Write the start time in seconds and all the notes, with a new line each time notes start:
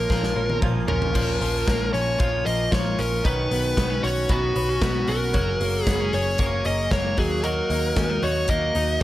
Already playing: A#3 C#4 A#4
0.09 A#1 F3 A#3 C#4 F4, kick, snare
0.23 snare
0.35 A#1 A#3 C#4 F4
0.50 high tom
0.62 A#1 A#2 F3 A#3 C#4 F4, kick, mid tom
0.87 A#1 A#3 C#4 F4 A#4, floor tom
1.02 floor tom
1.14 A#1 A#2 F3 A#3 C#4 F4, kick, crash
1.40 A#1 F3 A#3 C#4 F4, open hi-hat
1.66 A#1 F3 A#3 C#4 F4, kick, snare, closed hi-hat
1.93 A#1 A#3 C#4 F4 C#5, open hi-hat
2.19 A#1 A#2 F3 A#3 C#4 F4 C#5, kick, closed hi-hat
2.45 A#1 A#3 C#4 F4 D#5, open hi-hat
2.72 A#1 F3 A#3 C#4 F4 C#5, kick, snare, closed hi-hat
2.98 A#1 A#3 C#4 F4 A#4, open hi-hat
3.24 B1 B2 D#3 B3 C#4 F#4 B4, kick, closed hi-hat
3.50 B1 B3 C#4 F#4, open hi-hat
3.77 B1 D#3 B3 C#4 F#4, kick, snare, closed hi-hat
3.90 C#4
4.02 B1 B3 C#4 F#4 C#5, open hi-hat
4.29 B1 B2 D#3 B3 C#4 F#4, kick, closed hi-hat
4.55 B1 B3 C#4 F#4, open hi-hat
4.69 C#4
4.81 B1 D#3 B3 C#4 F#4, kick, snare, closed hi-hat
5.07 B1 B3 C#4 F#4 A#4, open hi-hat
5.33 F#1 F#3 A#3 C#4 G#4, kick, closed hi-hat
5.60 F#1 A#3 C#4 G#4, open hi-hat
5.83 F#1 F#3 A#3 B3 G#4, kick, snare, closed hi-hat
5.88 C#4 G#4
6.00 C#4
6.12 F#1 A#3 C#4 G#4 C#5, open hi-hat
6.38 F#1 F#3 A#3 C#4 G#4 C#5, kick, closed hi-hat
6.65 F#1 A#3 C#4 G#4 D#5, open hi-hat
6.91 F#1 F#3 A#3 C#4 G#4 C#5, kick, snare, closed hi-hat
7.17 D#2 F#3 A#3 D#4 F#4 G#4, kick, open hi-hat
7.43 D#3 F#3 A#3 D#4 F#4 A#4, closed hi-hat
7.69 D#2 A#3 D#4 F#4, open hi-hat
7.95 D#2 D#3 A#3 C#4 D#4 F#4, kick, snare, closed hi-hat
8.10 D#4
8.22 D#2 A#3 D#4 F#4 C#5, open hi-hat
8.48 D#2 D#3 A#3 D#4 F#4 D#5, kick, closed hi-hat
8.75 D#2 A#3 D#4 F#4, open hi-hat
9.00 D#3